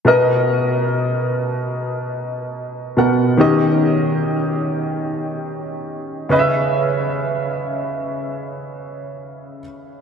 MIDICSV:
0, 0, Header, 1, 2, 480
1, 0, Start_track
1, 0, Key_signature, 5, "major"
1, 0, Tempo, 500000
1, 9612, End_track
2, 0, Start_track
2, 0, Title_t, "Grand piano"
2, 0, Program_c, 0, 0
2, 45, Note_on_c, 0, 47, 66
2, 57, Note_on_c, 0, 59, 65
2, 66, Note_on_c, 0, 70, 64
2, 76, Note_on_c, 0, 75, 77
2, 264, Control_c, 0, 64, 127
2, 2813, Note_off_c, 0, 47, 0
2, 2819, Note_off_c, 0, 59, 0
2, 2823, Note_off_c, 0, 70, 0
2, 2828, Note_off_c, 0, 75, 0
2, 2848, Note_on_c, 0, 47, 54
2, 2854, Note_on_c, 0, 59, 47
2, 2859, Note_on_c, 0, 70, 44
2, 2865, Note_on_c, 0, 78, 57
2, 3239, Note_on_c, 0, 51, 69
2, 3249, Note_on_c, 0, 61, 61
2, 3253, Note_off_c, 0, 47, 0
2, 3256, Note_off_c, 0, 59, 0
2, 3258, Note_off_c, 0, 70, 0
2, 3261, Note_off_c, 0, 78, 0
2, 3261, Note_on_c, 0, 67, 65
2, 3270, Control_c, 0, 64, 0
2, 3272, Note_on_c, 0, 75, 76
2, 3418, Control_c, 0, 64, 127
2, 6010, Note_off_c, 0, 51, 0
2, 6015, Note_off_c, 0, 61, 0
2, 6021, Note_off_c, 0, 67, 0
2, 6026, Note_off_c, 0, 75, 0
2, 6040, Note_on_c, 0, 49, 70
2, 6051, Note_on_c, 0, 61, 60
2, 6062, Note_on_c, 0, 71, 66
2, 6070, Control_c, 0, 64, 0
2, 6072, Note_on_c, 0, 75, 63
2, 6127, Note_off_c, 0, 75, 0
2, 6134, Note_on_c, 0, 76, 76
2, 6218, Control_c, 0, 64, 127
2, 9210, Note_off_c, 0, 49, 0
2, 9216, Note_off_c, 0, 61, 0
2, 9221, Note_off_c, 0, 71, 0
2, 9257, Note_off_c, 0, 76, 0
2, 9612, End_track
0, 0, End_of_file